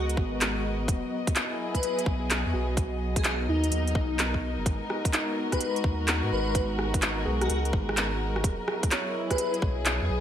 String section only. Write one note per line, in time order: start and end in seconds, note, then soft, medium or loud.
0.00 0.88 G#3 medium
0.00 10.20 B3 medium
0.00 1.65 F#4 medium
0.00 1.65 A#4 medium
0.00 10.20 D#5 medium
0.89 4.66 F#3 medium
1.28 3.55 G#4 medium
1.36 2.77 E4 medium
3.23 5.52 D#4 medium
3.38 9.21 A#4 medium
4.66 8.44 G#3 medium
4.90 9.10 F#4 medium
8.45 10.20 F#3 medium
8.71 10.20 E4 medium
9.27 10.20 G#4 medium